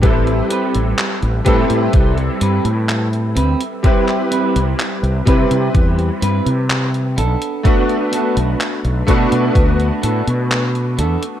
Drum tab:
HH |xxxxxxxxxxxxxxxx|xxxxxxxxxxxxxxxx|xxxxxxxxxxxxxxxx|
CP |----x-------x---|-x--x-------x---|----x-------x---|
BD |o-----o-o-------|o-----o-o-------|o-----o-o-------|